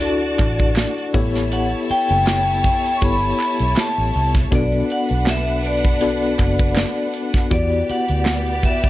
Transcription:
0.00 0.35 D2 medium
0.00 1.16 D4 medium
0.00 1.14 E4 medium
0.00 1.10 F#4 medium
0.00 1.17 F#4 medium
0.00 0.02 A4 medium
0.00 1.01 A4 medium
0.00 0.02 D5 medium
0.00 1.10 D5 medium
0.00 1.11 D5 medium
0.00 1.01 D5 medium
0.00 1.10 A5 medium
0.00 closed hi-hat medium
0.39 0.84 A1 medium
0.39 kick medium
0.39 clap medium
0.39 closed hi-hat medium
0.59 kick medium
0.59 closed hi-hat medium
0.76 snare loud
0.76 clap medium
0.76 closed hi-hat medium
0.98 closed hi-hat soft
1.14 1.73 A1 medium
1.14 2.35 B3 loud
1.14 2.35 E4 medium
1.14 4.48 E4 medium
1.14 2.35 G4 medium
1.14 2.35 A4 medium
1.14 4.48 C#5 medium
1.14 2.35 C#5 loud
1.14 4.48 A5 medium
1.14 kick loud
1.14 open hi-hat medium
1.35 snare soft
1.35 closed hi-hat soft
1.52 1.70 F#5 medium
1.52 closed hi-hat medium
1.90 2.92 G5 loud
1.90 muted fingered electric bass stroke soft
1.90 closed hi-hat medium
2.09 2.69 F#1 loud
2.09 closed hi-hat medium
2.27 snare loud
2.27 clap medium
2.27 closed hi-hat medium
2.64 kick medium
2.64 closed hi-hat medium
2.86 closed hi-hat soft
2.97 3.03 C#6 medium
3.01 3.31 G1 medium
3.01 4.01 B3 medium
3.01 4.01 E4 medium
3.01 4.01 G4 medium
3.01 4.01 A4 medium
3.01 4.01 C#5 medium
3.01 3.80 B5 loud
3.01 kick medium
3.01 closed hi-hat medium
3.22 closed hi-hat soft
3.40 clap medium
3.40 closed hi-hat medium
3.59 3.73 B1 medium
3.59 closed hi-hat medium
3.76 4.32 A5 loud
3.76 snare loud
3.76 clap medium
3.76 closed hi-hat medium
3.98 4.11 A1 medium
4.14 4.44 C2 loud
4.14 open hi-hat soft
4.35 kick loud
4.35 snare soft
4.35 closed hi-hat medium
4.51 4.81 B1 loud
4.51 5.51 B3 medium
4.51 5.51 D4 medium
4.51 7.48 D4 medium
4.51 5.51 F#4 medium
4.51 5.51 A4 medium
4.51 7.48 B4 medium
4.51 5.51 D5 medium
4.51 4.92 D5 medium
4.51 7.48 F#5 medium
4.51 kick loud
4.51 closed hi-hat medium
4.72 closed hi-hat soft
4.90 5.29 F#5 loud
4.90 closed hi-hat medium
5.09 6.36 B1 loud
5.09 closed hi-hat medium
5.26 5.63 E5 medium
5.26 snare loud
5.26 clap medium
5.26 closed hi-hat medium
5.47 closed hi-hat soft
5.65 7.11 D5 medium
5.65 open hi-hat medium
5.85 kick loud
5.85 closed hi-hat soft
6.01 7.00 B3 medium
6.01 7.01 D4 medium
6.01 7.01 F#4 medium
6.01 7.01 A4 medium
6.01 7.01 D5 medium
6.01 closed hi-hat loud
6.22 closed hi-hat soft
6.39 6.84 F#1 loud
6.39 kick medium
6.39 clap medium
6.39 closed hi-hat medium
6.59 kick medium
6.59 closed hi-hat medium
6.76 snare loud
6.76 clap medium
6.76 closed hi-hat loud
6.98 closed hi-hat soft
7.14 closed hi-hat medium
7.34 kick medium
7.34 snare soft
7.34 closed hi-hat medium
7.51 7.81 E2 loud
7.51 8.50 B3 medium
7.51 8.90 B3 medium
7.51 8.50 E4 medium
7.51 8.50 F#4 medium
7.51 8.50 G4 medium
7.51 8.90 G4 medium
7.51 8.50 D5 medium
7.51 8.90 D5 loud
7.51 7.91 D5 medium
7.51 kick loud
7.51 closed hi-hat medium
7.72 closed hi-hat soft
7.90 8.67 F#5 loud
7.90 muted fingered electric bass stroke soft
7.90 closed hi-hat medium
8.08 8.67 D2 medium
8.08 closed hi-hat medium
8.25 snare loud
8.25 clap medium
8.25 closed hi-hat medium
8.46 closed hi-hat soft
8.63 8.90 E5 medium
8.63 kick medium
8.63 closed hi-hat medium
8.84 kick medium
8.84 closed hi-hat medium

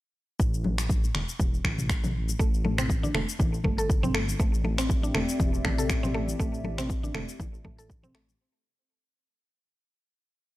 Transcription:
0.40 1.09 A1 loud
0.40 kick loud
0.40 shaker medium
0.54 shaker soft
0.64 muted conga medium
0.64 high conga medium
0.78 finger snap medium
0.78 shaker medium
0.90 kick loud
0.90 high conga medium
0.90 shaker medium
1.04 muted conga soft
1.04 shaker soft
1.15 1.24 E1 loud
1.15 finger snap medium
1.15 low conga medium
1.29 shaker medium
1.40 1.58 E1 medium
1.40 kick loud
1.40 muted conga medium
1.40 high conga medium
1.40 shaker medium
1.54 shaker soft
1.65 2.34 A1 medium
1.65 finger snap medium
1.65 kick medium
1.65 high conga medium
1.65 low conga medium
1.78 mid tom medium
1.78 muted conga soft
1.78 shaker medium
1.90 finger snap medium
1.90 kick loud
1.90 shaker medium
2.03 mid tom medium
2.03 high conga loud
2.03 low conga medium
2.03 shaker soft
2.29 muted conga soft
2.29 shaker medium
2.39 3.09 A1 loud
2.39 2.47 A3 loud
2.39 kick loud
2.39 shaker medium
2.54 shaker soft
2.65 2.77 A3 medium
2.65 muted conga medium
2.65 high conga medium
2.78 2.89 C4 loud
2.78 finger snap medium
2.78 mid tom medium
2.78 shaker medium
2.90 kick loud
2.90 high conga medium
2.90 shaker medium
3.03 3.14 D4 medium
3.03 muted conga soft
3.03 low conga medium
3.03 shaker soft
3.15 3.24 E1 loud
3.15 3.27 A3 loud
3.15 finger snap medium
3.15 low conga medium
3.29 shaker medium
3.39 3.58 A1 loud
3.39 3.52 E3 medium
3.39 kick loud
3.39 muted conga soft
3.39 low conga loud
3.39 shaker medium
3.54 shaker soft
3.64 4.34 G1 medium
3.64 3.77 A3 loud
3.64 kick medium
3.64 high conga loud
3.64 low conga loud
3.78 3.89 A4 loud
3.78 muted conga soft
3.78 shaker medium
3.90 kick loud
3.90 shaker medium
4.03 4.13 C4 loud
4.03 mid tom medium
4.03 high conga loud
4.03 shaker soft
4.15 4.27 A3 loud
4.15 finger snap medium
4.28 muted conga soft
4.28 shaker medium
4.40 5.09 A1 loud
4.40 4.47 A3 loud
4.40 8.36 C4 medium
4.40 8.36 G4 medium
4.40 8.36 D5 medium
4.40 8.36 E5 medium
4.40 kick loud
4.40 shaker medium
4.54 shaker soft
4.64 4.77 A3 medium
4.64 muted conga soft
4.64 high conga medium
4.78 4.89 C4 loud
4.78 finger snap medium
4.78 shaker medium
4.90 kick loud
4.90 high conga medium
4.90 shaker medium
5.03 5.14 D4 medium
5.03 muted conga soft
5.03 shaker soft
5.15 5.24 E1 loud
5.15 5.27 A3 loud
5.15 finger snap medium
5.15 low conga loud
5.29 shaker medium
5.40 5.58 E1 loud
5.40 5.52 E3 medium
5.40 kick loud
5.40 muted conga medium
5.40 high conga loud
5.40 shaker medium
5.54 shaker soft
5.65 6.34 A1 medium
5.65 5.77 A3 loud
5.65 finger snap medium
5.65 kick medium
5.65 high conga loud
5.65 low conga medium
5.78 5.89 A4 loud
5.78 mid tom medium
5.78 muted conga soft
5.78 shaker medium
5.90 finger snap medium
5.90 kick loud
5.90 shaker medium
6.03 6.14 C4 loud
6.03 mid tom medium
6.03 high conga loud
6.03 low conga medium
6.03 shaker soft
6.15 6.27 A3 loud
6.28 muted conga medium
6.28 shaker medium
6.40 7.09 A1 loud
6.40 6.47 A3 loud
6.40 kick loud
6.40 shaker medium
6.54 shaker soft
6.64 6.77 A3 medium
6.64 muted conga soft
6.64 high conga medium
6.78 6.89 C4 loud
6.78 finger snap medium
6.78 mid tom medium
6.78 shaker medium
6.89 kick loud
6.89 high conga medium
6.89 shaker medium
7.03 7.14 D4 medium
7.03 muted conga soft
7.03 low conga medium
7.03 shaker soft
7.14 7.24 E1 loud
7.14 7.27 A3 loud
7.14 finger snap medium
7.14 low conga medium
7.29 shaker medium
7.39 7.58 A1 loud
7.39 7.52 E3 medium
7.39 kick loud
7.39 muted conga medium
7.39 low conga loud
7.39 shaker medium
7.54 shaker soft
7.64 8.34 A1 medium
7.64 7.77 A3 loud
7.64 kick medium
7.64 high conga loud
7.64 low conga medium
7.78 7.89 A4 loud
7.78 muted conga soft
7.78 shaker medium
7.90 kick loud
7.90 shaker medium
8.03 8.14 C4 loud
8.03 mid tom medium
8.03 high conga loud
8.03 shaker soft
8.15 8.27 A3 loud
8.15 finger snap medium
8.28 muted conga soft
8.28 shaker medium

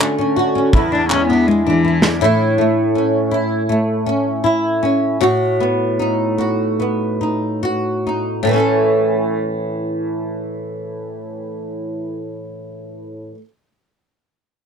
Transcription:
0.00 0.80 D3 medium
0.00 0.80 A3 soft
0.00 0.17 C#4 medium
0.00 0.35 F#4 medium
0.18 0.54 C#4 medium
0.36 0.73 F#4 medium
0.55 0.81 C#4 medium
0.73 2.28 E2 medium
0.73 1.84 E4 medium
0.73 kick loud
0.92 1.09 D4 medium
0.92 1.28 D4 medium
1.09 1.47 G#3 medium
1.09 1.27 C#4 medium
1.09 clap medium
1.27 1.48 B3 medium
1.27 1.65 D4 soft
1.47 1.64 G#3 medium
1.47 2.28 G#3 medium
1.66 2.18 E3 medium
1.66 2.01 D4 medium
1.84 2.21 E4 medium
2.02 2.28 D4 soft
2.02 snare medium
2.21 5.19 A2 medium
2.21 3.30 E4 medium
2.58 3.68 A3 medium
2.95 4.05 C#4 soft
3.31 4.43 E4 medium
3.69 5.29 A3 medium
4.06 4.81 C#4 medium
4.44 5.20 E4 medium
4.83 5.29 C#4 medium
5.21 8.42 A2 medium
5.21 6.37 F#4 medium
5.60 6.78 B3 medium
5.99 7.20 D#4 medium
6.38 7.61 F#4 medium
6.80 8.51 B3 soft
7.21 8.04 D#4 soft
7.63 8.56 F#4 medium
8.07 8.53 D#4 soft
8.43 13.30 A2 medium
8.47 13.34 E3 medium
8.51 13.38 A3 medium
8.51 13.41 C#4 medium
8.58 13.45 A4 medium

